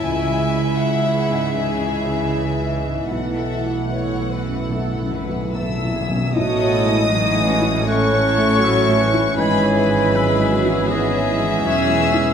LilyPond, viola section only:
\new Staff \with { instrumentName = "Viola section" } { \time 4/4 \key a \lydian \tempo 4 = 79 << { e'1 | e'2.~ e'8. r16 | fis'8 e'8 dis'8 cis'8 cis'2 | e'2 b4 cis'8 cis'8 | } \\ { e1~ | e2.~ e8. r16 | fis4 e4 a8 a8 fis8 e8 | e4 gis8 fis8 e8 e4. | } >> }